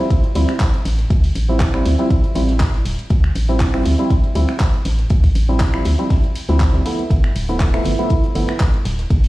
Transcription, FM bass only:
0.35 D2
0.85 A1
1.10 D2
1.35 A1
1.85 D2
2.35 A1
2.85 D1
3.10 D2
3.35 A1
3.85 D2
4.35 D2
4.85 A1
5.10 D2
5.35 A1
5.85 D2
6.49 D2
7.10 G1
7.35 D1
7.85 G1
8.35 G1
8.85 D1
9.10 G1

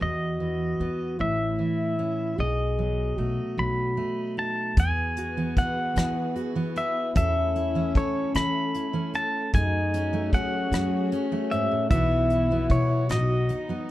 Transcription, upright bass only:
0.01 E2
0.80 E2
1.20 A1
2.39 B1
3.18 B1
3.58 B1
4.77 E2
5.57 E3
5.97 E3
7.16 E2
7.95 E3
8.35 E3
9.54 F#2
10.33 F#3
10.72 F#3
11.91 B1
12.70 B2
13.10 B1

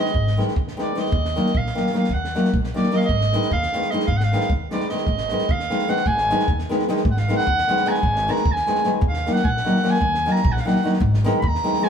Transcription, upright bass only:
0.14 G#1
0.56 D#2
1.12 D#2
1.55 A#1
2.09 D#2
2.54 A#1
3.09 G#1
3.52 D#2
4.08 G#1
4.51 D#2
5.08 G#1
5.50 D#2
6.07 G#1
6.49 D#2
7.05 G#1
7.47 D#2
8.03 G#1
8.46 D#2
9.01 D#2
9.44 A#1
10.01 D#2
10.44 A#1
11.00 G#1
11.42 D#2

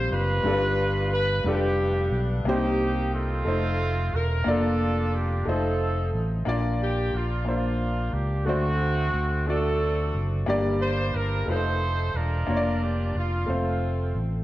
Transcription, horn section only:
0.12 D4 F4 B4
1.13 B4
1.46 B3 D4 G4
2.47 A#3 D#4 G4
3.13 A3 C4 F4
4.15 A#4
4.48 D4 F4 A4
5.16 G4
5.49 C4 D#4 A4
6.82 G4
7.15 F4
7.48 A#3 D4 F4
8.14 G4
8.47 A3 C4 F#4
9.47 C4 F#4 A4
10.81 C5
11.15 A#4
11.49 D#4 A4 C5
12.16 D4 F4 A#4
12.83 G4
13.17 F4
13.50 A3 C4 F4

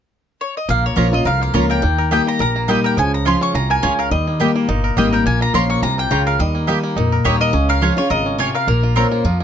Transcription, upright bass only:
0.69 A#1
0.97 A#1
1.25 C2
1.54 C#2
1.83 D#2
2.40 A#1
2.97 C#2
3.54 C2
3.83 C#2
4.11 D#2
4.69 G1
4.97 G#1
5.26 A#1
5.54 A#1
5.82 C2
6.11 C#2
6.39 D#2
6.96 F2
7.25 D#2
7.53 C#2
8.10 G#1
8.67 A#1
9.24 F2

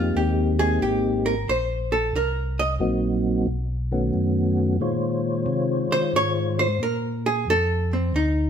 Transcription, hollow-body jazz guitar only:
Already playing: F4
0.17 G4
0.59 G#4
0.82 G4
1.26 A#4
1.49 C5
1.92 A4
2.16 A#4
2.59 D#5
5.92 C5
6.16 C#5
6.59 C5
6.83 A#4
7.26 G#4
7.50 A4
7.93 C4
8.16 D#4

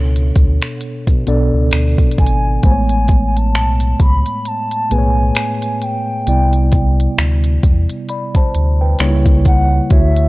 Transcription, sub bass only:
Already playing: C#2
0.36 D2
1.07 B2
1.27 B1
1.53 C#2
1.72 D2
2.18 G#1
2.63 A1
3.54 B1
4.00 C#2
4.91 B1
6.27 C2
7.18 D2
7.63 E2
8.55 D2
9.00 C#2
9.91 D2

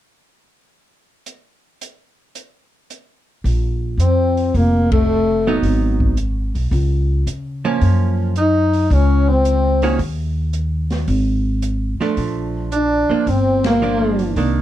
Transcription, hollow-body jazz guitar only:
5.47 F#3 B3 D#4
7.65 F3 A#3 C#4
9.83 D#3 A#3 C#4 F#4
12.01 F3 A3 D4
13.10 F3 A#3 D4
13.82 F3 A#3 D4
14.37 D#3 A#3 D4

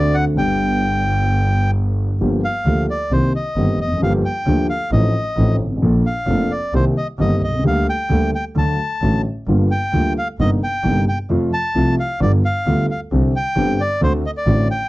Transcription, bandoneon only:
Already playing: D5
0.14 F#5
0.38 G5
2.44 F5
2.90 D5
3.13 C5
3.36 D#5
3.81 D#5
4.03 F5
4.25 G5
4.70 F5
4.92 D#5
6.06 F5
6.51 D5
6.75 C5
6.98 D#5
7.21 D#5
7.44 D#5
7.67 F5
7.89 G5
8.35 G5
8.58 A5
9.71 G5
10.18 F5
10.40 D#5
10.64 G5
11.09 G5
11.53 A5
12.00 F5
12.22 D5
12.45 F5
12.91 F5
13.36 G5
13.81 D5
14.03 C5
14.26 D#5
14.37 D5
14.71 G5

